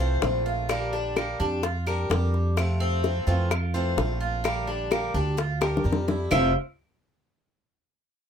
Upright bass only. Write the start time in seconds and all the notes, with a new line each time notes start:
Already playing: C2
0.22 A#1
1.40 F2
2.10 F2
3.27 F2
3.97 A#1
5.14 D2
5.85 F2
6.31 F1